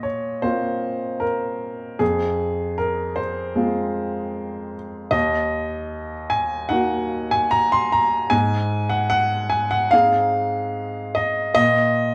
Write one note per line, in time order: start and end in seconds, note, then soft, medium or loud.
0.00 1.96 A#2 soft
0.00 0.43 C#5 medium
0.00 2.02 D#5 medium
0.42 1.96 A#3 soft
0.42 1.96 C4 soft
0.42 1.97 F4 soft
0.42 1.22 C5 medium
1.20 1.99 A#4 medium
1.99 5.09 F2 soft
1.99 2.77 G#4 medium
2.78 3.17 A#4 medium
3.16 4.73 C5 medium
3.55 5.09 G#3 soft
3.55 5.09 C4 soft
3.55 5.09 F4 soft
5.11 8.27 D#2 medium
5.11 6.30 D#5 medium
6.30 6.70 G#5 medium
6.69 8.28 A#3 soft
6.69 8.27 D#4 soft
6.69 8.28 F#4 soft
6.69 7.31 F#5 medium
7.31 7.52 G#5 medium
7.51 7.72 A#5 medium
7.72 7.92 C6 medium
7.92 8.32 A#5 medium
8.30 11.51 G#2 medium
8.30 8.90 G#5 medium
8.89 9.08 F#5 medium
9.10 9.51 F#5 medium
9.50 9.71 G#5 medium
9.71 9.92 F#5 medium
9.91 11.52 C4 soft
9.91 11.52 D#4 soft
9.91 11.52 G#4 soft
9.91 11.14 F5 loud
11.15 11.53 D#5 medium
11.55 12.15 A#2 medium
11.55 12.15 D#5 loud